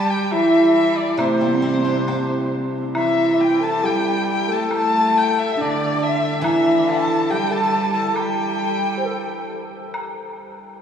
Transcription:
0.00 0.36 G3 medium
0.00 1.40 G3 medium
0.00 0.12 A5 medium
0.00 0.13 A5 medium
0.10 0.22 G4 medium
0.10 0.24 G5 medium
0.10 0.33 G5 medium
0.23 0.33 G4 medium
0.23 0.33 G5 medium
0.31 1.22 E3 medium
0.31 0.75 E4 medium
0.31 0.73 E5 medium
0.31 high woodblock soft
0.73 1.17 E4 medium
0.73 0.98 E5 medium
0.73 0.99 E5 medium
0.96 1.21 D5 medium
0.96 1.20 D5 medium
1.17 3.84 C3 medium
1.17 2.52 C3 medium
1.17 1.60 A3 medium
1.17 2.51 C5 medium
1.17 2.52 C5 medium
1.17 high woodblock medium
1.41 3.18 G3 soft
1.60 2.48 C4 medium
1.60 3.40 C4 soft
1.85 3.62 D4 soft
2.08 3.85 G4 soft
2.08 high woodblock soft
2.08 low woodblock soft
2.94 3.84 E3 medium
2.94 3.58 E4 medium
2.94 3.37 E5 medium
2.94 3.42 E5 medium
2.94 high woodblock medium
3.40 3.63 G5 medium
3.40 3.65 G5 medium
3.60 3.82 A4 medium
3.60 3.86 A5 medium
3.60 3.87 A5 loud
3.82 4.51 G3 medium
3.82 4.46 G4 medium
3.82 4.27 G5 medium
3.82 4.29 G5 medium
3.82 low woodblock soft
4.28 4.73 G5 medium
4.28 4.53 G5 medium
4.48 4.70 A3 medium
4.48 4.69 A4 loud
4.48 4.73 A5 medium
4.69 5.54 A3 medium
4.69 5.54 A4 medium
4.69 5.54 A5 medium
4.69 high woodblock medium
4.76 5.19 A5 loud
5.18 5.41 G5 medium
5.39 5.63 E5 medium
5.53 5.61 E5 medium
5.57 6.45 D3 medium
5.57 6.40 D4 medium
5.57 6.04 D5 medium
5.57 low woodblock soft
5.61 6.05 D5 medium
6.03 6.38 E5 medium
6.03 6.45 E5 medium
6.38 9.03 E3 medium
6.38 6.45 G5 medium
6.43 7.31 E3 medium
6.43 6.84 E4 medium
6.43 6.88 E5 medium
6.43 6.90 E5 medium
6.43 high woodblock medium
6.86 7.28 A4 medium
6.86 7.31 A5 medium
6.86 7.32 A5 medium
7.30 8.17 G3 medium
7.30 7.50 G4 medium
7.30 7.53 G5 medium
7.30 low woodblock soft
7.51 7.91 A4 medium
7.51 7.94 A5 medium
7.51 7.92 A5 loud
7.93 8.14 A4 medium
7.93 8.17 A5 medium
7.93 8.11 A5 medium
8.11 8.93 G4 medium
8.11 8.17 A5 medium
8.16 9.46 G3 medium
8.16 9.49 G5 medium
8.16 high woodblock medium
8.98 9.06 C5 medium
9.05 9.49 A4 medium
9.94 high woodblock medium

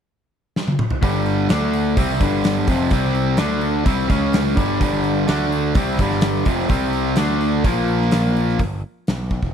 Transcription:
0.56 snare medium
0.68 high tom medium
0.79 mid tom medium
0.90 floor tom medium
1.02 1.47 G1 medium
1.02 1.49 G2 medium
1.02 1.49 D3 loud
1.02 1.50 G3 medium
1.02 kick medium
1.02 open hi-hat medium
1.26 open hi-hat medium
1.49 1.95 D2 loud
1.49 1.97 D3 medium
1.49 1.97 A3 loud
1.49 1.97 D4 loud
1.49 snare loud
1.49 open hi-hat medium
1.74 open hi-hat medium
1.97 2.19 C2 medium
1.97 2.20 C3 medium
1.97 2.21 G3 medium
1.97 2.21 C4 medium
1.97 kick loud
1.97 open hi-hat medium
2.20 2.65 G1 loud
2.20 2.67 G2 medium
2.20 2.68 D3 medium
2.20 2.68 G3 medium
2.20 kick loud
2.20 open hi-hat medium
2.44 snare loud
2.44 open hi-hat medium
2.67 2.90 F1 medium
2.67 2.91 F2 medium
2.67 2.90 C3 medium
2.67 2.91 F3 loud
2.67 kick loud
2.67 open hi-hat medium
2.91 3.36 C2 loud
2.91 3.38 C3 medium
2.91 3.39 G3 loud
2.91 3.39 C4 loud
2.91 kick loud
2.91 open hi-hat medium
3.15 open hi-hat medium
3.37 3.84 D2 medium
3.37 3.85 D3 loud
3.37 3.85 A3 loud
3.37 3.86 D4 loud
3.37 snare loud
3.37 open hi-hat medium
3.61 open hi-hat medium
3.85 4.08 C2 loud
3.85 4.07 C3 medium
3.85 4.09 G3 medium
3.85 4.09 C4 loud
3.85 kick loud
3.85 open hi-hat medium
4.08 4.54 C#2 loud
4.08 4.55 C#3 medium
4.08 4.56 G#3 medium
4.08 4.57 C#4 medium
4.08 kick loud
4.08 open hi-hat medium
4.33 snare loud
4.33 open hi-hat medium
4.55 4.79 G1 medium
4.55 4.79 G2 medium
4.55 4.80 D3 loud
4.55 4.80 G3 loud
4.55 kick loud
4.55 open hi-hat medium
4.80 5.25 G1 medium
4.80 5.27 G2 medium
4.80 5.27 D3 loud
4.80 5.28 G3 loud
4.80 kick loud
4.80 open hi-hat medium
5.04 open hi-hat medium
5.28 5.73 D2 medium
5.28 5.75 D3 loud
5.28 5.75 A3 loud
5.28 5.75 D4 loud
5.28 snare loud
5.28 open hi-hat medium
5.52 open hi-hat medium
5.75 5.98 C2 loud
5.75 5.99 C3 medium
5.75 5.99 G3 loud
5.75 5.99 C4 loud
5.75 kick loud
5.75 open hi-hat medium
5.99 6.43 G1 loud
5.99 6.46 G2 medium
5.99 6.46 D3 medium
5.99 6.47 G3 medium
5.99 kick loud
5.99 open hi-hat medium
6.11 snare soft
6.21 snare loud
6.21 open hi-hat medium
6.45 6.68 F1 medium
6.45 6.70 F2 medium
6.45 6.67 C3 medium
6.45 6.69 F3 loud
6.45 kick loud
6.45 open hi-hat medium
6.59 snare soft
6.69 7.14 C2 medium
6.69 7.16 C3 medium
6.69 7.17 G3 medium
6.69 7.17 C4 loud
6.69 kick loud
6.69 open hi-hat medium
6.93 open hi-hat medium
7.16 7.62 D2 loud
7.16 7.64 D3 medium
7.16 7.65 A3 loud
7.16 7.65 D4 loud
7.16 snare loud
7.16 open hi-hat medium
7.41 open hi-hat medium
7.64 8.56 A#1 loud
7.64 8.60 A#2 medium
7.64 8.60 F3 loud
7.64 8.60 A#3 medium
7.64 kick loud
7.64 open hi-hat medium
7.88 open hi-hat medium
8.02 snare soft
8.11 snare loud
8.11 open hi-hat medium
8.37 open hi-hat medium
8.49 snare soft
8.59 8.82 G1 loud
8.59 kick medium
8.59 open hi-hat soft
9.07 9.41 B1 medium
9.07 snare loud
9.07 open hi-hat soft
9.31 kick medium
9.43 9.54 E1 medium
9.43 kick medium

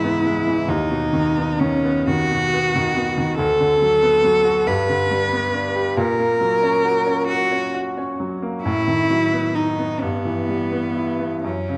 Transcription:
0.00 0.66 C#2 soft
0.00 0.72 G#2 soft
0.00 0.47 E3 soft
0.00 0.26 G#3 soft
0.00 0.04 B3 soft
0.00 0.39 B3 soft
0.00 0.70 E4 medium
0.26 0.60 G#3 soft
0.47 0.69 E3 soft
0.68 3.35 D#2 medium
0.68 1.61 D#4 medium
0.91 1.27 B2 soft
1.13 1.51 D#3 soft
1.38 1.75 B3 soft
1.60 1.99 D#3 soft
1.60 2.08 C#4 medium
1.85 2.22 B3 soft
2.06 2.44 D#3 soft
2.06 3.38 F#4 medium
2.31 2.66 B2 soft
2.54 2.88 B3 soft
2.76 3.10 D#3 soft
2.97 3.31 B3 soft
3.18 3.39 D#3 soft
3.39 4.63 D2 medium
3.39 4.69 A4 medium
3.60 3.94 D3 soft
3.82 4.16 F#3 soft
4.03 4.37 B3 soft
4.24 4.59 F#3 soft
4.45 4.67 F#4 soft
4.67 5.93 G2 medium
4.67 5.98 B4 medium
4.89 5.24 D3 soft
5.11 5.45 G3 soft
5.33 5.67 B3 soft
5.54 5.88 D4 soft
5.76 5.97 G4 soft
5.97 8.61 A#2 medium
5.97 7.27 A#4 medium
6.19 6.54 A#3 soft
6.41 6.76 F#3 soft
6.63 6.98 C#4 soft
6.85 7.20 F#4 soft
7.07 7.43 C#4 soft
7.28 7.73 F#4 medium
7.28 7.65 F#4 soft
7.52 7.88 C#4 soft
7.75 8.11 F#4 soft
7.98 8.33 C#4 soft
8.20 8.56 F#3 soft
8.42 8.65 A#3 soft
8.64 9.98 A2 medium
8.64 9.57 E4 medium
8.88 9.24 D#3 soft
9.10 9.47 F#3 soft
9.33 9.70 B3 soft
9.55 10.03 D#4 medium
9.55 9.93 D#4 soft
9.79 10.02 B3 soft
10.01 11.40 G2 soft
10.01 11.44 B3 medium
10.25 10.62 E3 soft
10.49 10.86 G3 soft
10.72 11.10 B3 soft
10.96 11.34 E4 soft
11.19 11.44 B3 soft
11.44 11.78 F#2 soft
11.44 11.78 C#4 soft
11.69 11.78 C#3 soft

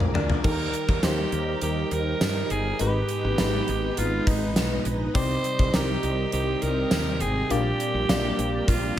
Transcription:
0.00 0.15 A#1 medium
0.00 0.38 G#3 medium
0.00 0.14 C4 medium
0.00 0.39 D4 medium
0.00 0.39 F4 medium
0.00 0.42 F4 medium
0.00 0.39 A#4 medium
0.00 0.40 A#4 medium
0.00 0.42 D5 medium
0.00 0.41 G#5 medium
0.00 mid tom medium
0.14 0.36 D2 medium
0.14 0.42 D4 loud
0.14 floor tom loud
0.30 floor tom medium
0.44 0.66 D#2 loud
0.44 1.29 D#3 medium
0.44 2.78 D#3 medium
0.44 2.76 G3 medium
0.44 0.99 D#4 medium
0.44 2.76 D#4 medium
0.44 7.47 D#4 medium
0.44 0.99 G4 medium
0.44 2.78 G4 medium
0.44 0.51 A4 medium
0.44 1.05 A#4 loud
0.44 2.76 A#4 medium
0.44 2.78 A#4 loud
0.44 kick loud
0.44 crash loud
0.51 1.03 A#4 medium
0.74 closed hi-hat medium
0.89 0.99 D#2 medium
0.89 kick medium
1.03 1.24 D#2 loud
1.03 2.13 D#4 medium
1.03 2.13 G4 medium
1.03 1.62 G4 loud
1.03 2.14 C5 medium
1.03 snare loud
1.03 closed hi-hat medium
1.03 tambourine medium
1.32 1.54 D#2 loud
1.32 closed hi-hat medium
1.61 1.83 D#2 medium
1.61 1.94 G4 loud
1.61 closed hi-hat loud
1.91 2.13 D#2 loud
1.91 2.53 A#4 loud
1.91 closed hi-hat medium
2.21 2.42 G2 medium
2.21 snare loud
2.21 closed hi-hat medium
2.21 tambourine medium
2.50 2.72 G1 loud
2.50 2.80 G#4 medium
2.50 closed hi-hat medium
2.79 3.01 G#1 loud
2.79 3.64 G#2 medium
2.79 5.12 G#3 medium
2.79 5.11 G#3 medium
2.79 3.35 G#3 medium
2.79 5.12 B3 medium
2.79 3.35 D#4 medium
2.79 5.11 D#4 medium
2.79 4.00 G4 loud
2.79 2.87 A#4 medium
2.79 5.11 B4 medium
2.79 closed hi-hat medium
2.87 3.38 B4 medium
3.09 closed hi-hat medium
3.25 3.35 G#1 loud
3.38 3.60 G#1 loud
3.38 4.49 G#3 medium
3.38 4.49 D#4 medium
3.38 4.49 B4 medium
3.38 snare loud
3.38 closed hi-hat medium
3.38 tambourine medium
3.68 3.90 G#1 loud
3.68 closed hi-hat medium
3.97 4.19 G#1 loud
3.97 4.29 F4 medium
3.97 closed hi-hat loud
4.27 4.57 G#1 loud
4.27 4.86 D#4 medium
4.27 kick loud
4.27 closed hi-hat medium
4.56 4.78 B1 medium
4.56 snare loud
4.56 closed hi-hat medium
4.56 tambourine medium
4.85 5.07 A#1 medium
4.85 closed hi-hat medium
5.14 5.36 C2 loud
5.14 5.99 C3 medium
5.14 7.48 C3 medium
5.14 7.48 G3 medium
5.14 5.70 C4 medium
5.14 7.46 C4 medium
5.14 8.99 C4 medium
5.14 5.70 D#4 medium
5.14 5.70 G4 medium
5.14 7.46 G4 medium
5.14 5.76 C5 loud
5.14 5.70 D5 medium
5.14 7.47 D#5 medium
5.14 kick loud
5.14 closed hi-hat loud
5.44 closed hi-hat medium
5.59 5.70 C2 medium
5.59 kick medium
5.73 5.95 C2 medium
5.73 6.84 C4 medium
5.73 6.84 D#4 medium
5.73 6.84 G4 medium
5.73 6.32 G4 loud
5.73 6.84 A#4 medium
5.73 6.84 D5 medium
5.73 snare loud
5.73 closed hi-hat medium
5.73 tambourine medium
6.03 6.25 C2 loud
6.03 closed hi-hat medium
6.32 6.54 C2 loud
6.32 6.64 G4 loud
6.32 closed hi-hat loud
6.62 6.84 C2 loud
6.62 7.23 A#4 loud
6.62 closed hi-hat medium
6.91 7.23 D#2 medium
6.91 snare loud
6.91 closed hi-hat medium
6.91 tambourine medium
7.20 7.42 G#1 medium
7.20 7.52 G#4 loud
7.20 closed hi-hat medium
7.49 7.71 A#1 loud
7.49 8.35 A#2 medium
7.49 8.99 G3 medium
7.49 8.99 A#3 medium
7.49 8.05 A#3 medium
7.49 8.99 A#3 medium
7.49 8.05 D4 medium
7.49 8.06 F4 medium
7.49 8.99 G4 medium
7.49 8.70 G4 loud
7.49 8.06 G4 medium
7.49 8.99 D5 medium
7.49 8.06 D5 medium
7.49 closed hi-hat loud
7.80 closed hi-hat medium
7.94 8.05 A#1 loud
8.09 8.30 A#1 medium
8.09 8.99 A#3 medium
8.09 8.99 D4 medium
8.09 8.99 F4 medium
8.09 8.99 G4 medium
8.09 8.99 D5 medium
8.09 snare loud
8.09 closed hi-hat medium
8.09 tambourine medium
8.39 8.60 A#1 loud
8.39 closed hi-hat medium
8.68 8.89 A#1 medium
8.68 8.99 F4 medium
8.68 kick medium
8.68 closed hi-hat loud

